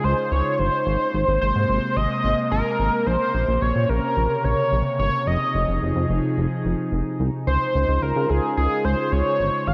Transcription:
Already playing: analog synth pad C#3 G#3 D#4 F4
0.04 analog synth bass C#2, analog synth lead C5
0.32 analog synth bass C#2, analog synth lead C#5
0.59 analog synth bass G1, analog synth lead C5
0.87 analog synth bass G#1, analog synth pad C3 G#3 A#3
1.14 analog synth bass G#1
1.28 analog synth bass G#1
1.41 analog synth bass G#1, analog synth lead C5
1.56 analog synth bass G#2
1.69 analog synth bass G#1
1.96 analog synth bass G#1, analog synth lead D#5
2.24 analog synth bass G#1
2.52 analog synth bass G#1, analog synth lead A#4
2.79 analog synth bass G#1
3.07 analog synth bass A#1, analog synth pad C3 C#3, analog synth lead C5
3.34 analog synth bass A#1
3.48 analog synth bass A#1
3.62 analog synth bass A#1, analog synth lead C#5
3.76 analog synth bass A#2
3.89 analog synth bass A#1, analog synth lead A#4
4.17 analog synth bass A#1
4.44 analog synth bass A#1, analog synth lead C#5
4.72 analog synth bass A#1
4.99 analog synth bass G1, analog synth lead C#5
5.27 analog synth bass F1, analog synth pad F3 D#4 G#4, analog synth lead D#5
5.55 analog synth bass F1
5.68 analog synth bass F1
5.82 analog synth bass F1
5.96 analog synth bass F2
6.10 analog synth bass F1
6.37 analog synth bass F1
6.65 analog synth bass F1
6.92 analog synth bass F1
7.20 analog synth bass C2
7.47 analog synth bass C#2, analog synth pad C#3 G#3 F4, analog synth lead C5
7.75 analog synth bass C#2
7.88 analog synth bass C#2
8.02 analog synth bass C#2, analog synth lead A#4
8.16 analog synth bass C#3
8.30 analog synth bass C#2, analog synth lead G#4
8.57 analog synth bass C#2, analog synth lead G#4
8.85 analog synth bass C#2, analog synth lead C5
9.12 analog synth bass C#2, analog synth lead C#5
9.40 analog synth bass G1
9.67 analog synth bass G#1, analog synth pad C3 A#3, analog synth lead F5

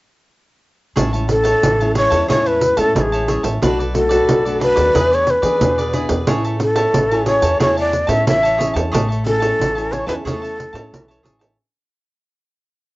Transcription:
0.96 upright bass A1, nylon-string guitar A2 G#3 C#4 E4, cavaquinho G#4 C#5 E5 A5, pandeiro
1.13 nylon-string guitar G#3 C#4 E4, cavaquinho C#5 E5 A5, pandeiro
1.28 nylon-string guitar C#4 E4, shakuhachi A4, muted cavaquinho stroke, pandeiro
1.43 cavaquinho C#5 E5 A5, pandeiro
1.63 upright bass A1, nylon-string guitar E3, pandeiro
1.80 nylon-string guitar G#3 C#4 E4, cavaquinho C#5 E5 A5, pandeiro
1.95 cavaquinho G#4 C#5 E5 A5, shakuhachi C#5, pandeiro
2.10 upright bass E2, cavaquinho C#5 E5 A5, pandeiro
2.28 upright bass E2, nylon-string guitar A2 G#3 C#4 E4, cavaquinho G#4 C#5 E5 A5, shakuhachi C#5, pandeiro
2.46 shakuhachi B4, cavaquinho C#5 E5 A5, pandeiro
2.61 muted cavaquinho stroke, pandeiro
2.77 upright bass A2, nylon-string guitar G#3 C#4 E4, shakuhachi A4, cavaquinho C#5 E5 A5, pandeiro
2.95 upright bass A1, nylon-string guitar E3, shakuhachi A4, pandeiro
3.02 shakuhachi G#4
3.12 cavaquinho C#5 E5 A5, pandeiro
3.28 nylon-string guitar G#3 C#4 E4, cavaquinho G#4 C#5 E5 A5, pandeiro
3.43 upright bass A1, cavaquinho C#5 E5 A5, pandeiro
3.62 upright bass B1, nylon-string guitar B2 A3 D4 F#4, cavaquinho D4 A4 B4 D5, pandeiro
3.79 cavaquinho A4 B4 D5, pandeiro
3.94 nylon-string guitar A3 D4 F#4, shakuhachi A4, muted cavaquinho stroke, pandeiro
4.09 nylon-string guitar A3 D4 F#4, cavaquinho A4 B4 D5, pandeiro
4.29 upright bass B1, nylon-string guitar F#2, pandeiro
4.45 nylon-string guitar A3 D4 F#4, cavaquinho A4 B4 D5, pandeiro
4.60 cavaquinho D4 A4 B4 D5, shakuhachi B4, pandeiro
4.76 upright bass D#2, cavaquinho A4 B4 D5, pandeiro
4.94 upright bass E2, nylon-string guitar E3 B3 D4 G#4, cavaquinho E4 G#4 B4 D5, pandeiro
5.11 cavaquinho G#4 B4 D5, shakuhachi C#5, pandeiro
5.27 shakuhachi B4, muted cavaquinho stroke, pandeiro
5.42 upright bass E3, nylon-string guitar B3 D4 G#4, cavaquinho G#4 B4 D5, pandeiro
5.60 upright bass E2, nylon-string guitar B2 B3 D4 G#4, pandeiro
5.78 cavaquinho G#4 B4 D5, pandeiro
5.93 nylon-string guitar B3 D4 G#4, cavaquinho E4 G#4 B4 D5, pandeiro
6.09 upright bass E2, cavaquinho G#4 B4 D5, pandeiro
6.27 upright bass A1, nylon-string guitar A3 C#4 E4 G#4, cavaquinho G#4 C#5 E5 A5, pandeiro
6.44 cavaquinho C#5 E5 A5, pandeiro
6.60 nylon-string guitar C#4 E4, shakuhachi A4, muted cavaquinho stroke, pandeiro
6.76 cavaquinho C#5 E5 A5, pandeiro
6.94 upright bass A1, nylon-string guitar E3, pandeiro
7.11 nylon-string guitar C#4 E4 G#4, cavaquinho C#5 E5 A5, pandeiro
7.26 nylon-string guitar C#4 E4 G#4, cavaquinho G#4 C#5 E5 A5, shakuhachi C#5, pandeiro
7.42 upright bass E2, cavaquinho C#5 E5 A5, pandeiro
7.60 upright bass E2, nylon-string guitar A3 C#4 E4 G#4, cavaquinho G#4 C#5 E5 A5, shakuhachi C#5, pandeiro
7.77 cavaquinho C#5 E5 A5, shakuhachi D5, pandeiro
7.92 muted cavaquinho stroke, pandeiro
8.07 upright bass A2, nylon-string guitar C#4 E4, cavaquinho C#5 E5 A5, shakuhachi E5, pandeiro
8.27 upright bass A1, nylon-string guitar E3, shakuhachi E5, pandeiro
8.43 cavaquinho C#5 E5 A5, pandeiro
8.58 nylon-string guitar C#4 E4 G#4, cavaquinho G#4 C#5 E5 A5, pandeiro
8.74 upright bass E2, cavaquinho C#5 E5 A5, pandeiro
8.91 upright bass A1, nylon-string guitar A3, cavaquinho G#4 C#5 E5 A5, pandeiro
9.08 cavaquinho C#5 E5 A5, pandeiro
9.24 nylon-string guitar C#4 E4 G#4, shakuhachi A4, muted cavaquinho stroke, pandeiro
9.40 nylon-string guitar C#4 E4 G#4, cavaquinho C#5 E5 A5, pandeiro
9.60 upright bass A1, nylon-string guitar E3, pandeiro
9.75 nylon-string guitar C#4 E4 G#4, cavaquinho C#5 E5 A5, pandeiro
9.91 cavaquinho G#4 C#5 E5 A5, shakuhachi C#5, pandeiro
10.06 upright bass E2, nylon-string guitar C#4 E4 G#4, shakuhachi B4, cavaquinho C#5 E5 A5, pandeiro
10.25 upright bass E2, nylon-string guitar A3 C#4 E4, cavaquinho G#4 C#5 E5 A5, shakuhachi A4, pandeiro
10.42 cavaquinho C#5 E5 A5, pandeiro
10.57 muted cavaquinho stroke, pandeiro
10.73 upright bass A2, nylon-string guitar C#4 E4, cavaquinho C#5 E5 A5, pandeiro
10.93 upright bass B1, nylon-string guitar E3, pandeiro
11.08 cavaquinho C#5 E5 A5, pandeiro
11.23 upright bass A1, nylon-string guitar C#4 E4 G#4, cavaquinho G#4 C#5 E5 A5, pandeiro
11.39 cavaquinho C#5 E5 A5, pandeiro

